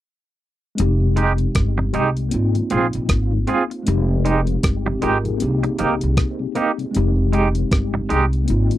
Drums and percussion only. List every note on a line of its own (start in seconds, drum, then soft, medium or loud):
0.78 closed hi-hat loud
1.17 closed hi-hat medium
1.38 closed hi-hat medium
1.55 kick loud
1.55 cross-stick loud
1.55 closed hi-hat medium
1.94 closed hi-hat medium
2.17 closed hi-hat soft
2.31 closed hi-hat medium
2.55 closed hi-hat soft
2.70 closed hi-hat medium
2.93 closed hi-hat medium
3.09 kick loud
3.09 cross-stick loud
3.09 closed hi-hat medium
3.47 closed hi-hat medium
3.71 closed hi-hat soft
3.87 closed hi-hat medium
4.26 closed hi-hat medium
4.47 closed hi-hat medium
4.63 kick loud
4.63 cross-stick loud
4.63 closed hi-hat loud
5.02 closed hi-hat medium
5.25 closed hi-hat medium
5.40 closed hi-hat loud
5.64 closed hi-hat medium
5.79 closed hi-hat medium
6.01 closed hi-hat medium
6.17 kick loud
6.17 cross-stick loud
6.17 closed hi-hat medium
6.55 closed hi-hat medium
6.79 closed hi-hat soft
6.95 closed hi-hat medium
7.33 closed hi-hat medium
7.55 closed hi-hat soft
7.72 kick loud
7.72 cross-stick loud
7.72 closed hi-hat medium
8.10 closed hi-hat medium
8.33 closed hi-hat soft
8.48 closed hi-hat medium
8.71 closed hi-hat soft